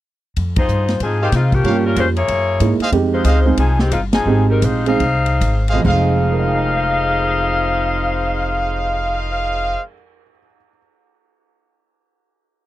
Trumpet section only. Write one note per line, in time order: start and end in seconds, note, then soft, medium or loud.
1.20 1.29 G#4 medium
1.20 1.29 C5 medium
1.20 1.29 D#5 medium
1.20 1.29 F5 medium
1.64 1.78 G4 medium
1.64 1.78 A#4 medium
1.64 1.78 C#5 medium
1.64 1.78 F5 medium
2.81 2.89 G#4 medium
2.81 2.89 C5 medium
2.81 2.89 D#5 medium
2.81 2.89 F5 loud
3.24 3.38 G#4 medium
3.24 3.38 C5 medium
3.24 3.38 D#5 medium
3.24 3.38 F5 medium
5.68 5.79 G#4 medium
5.68 5.79 C5 medium
5.68 5.79 D#5 medium
5.68 5.79 F5 loud
5.85 9.79 C5 medium
5.85 9.79 D#5 medium
5.85 9.79 F5 medium